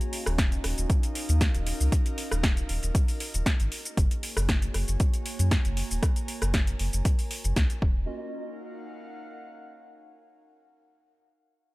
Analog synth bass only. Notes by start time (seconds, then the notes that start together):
0.26 D#1
0.64 D#1
0.78 D#1
1.29 D#2
1.55 D#1
1.80 C#2
2.32 D#1
2.69 D#1
2.83 D#1
3.34 D#1
3.60 G#1
3.97 F#1
4.37 F#1
4.74 F#1
4.88 F#1
5.39 F#2
5.65 F#1
5.91 D#1
6.42 F#1
6.80 F#1
6.93 F#1
7.44 F#1
7.56 C#2
7.82 D#1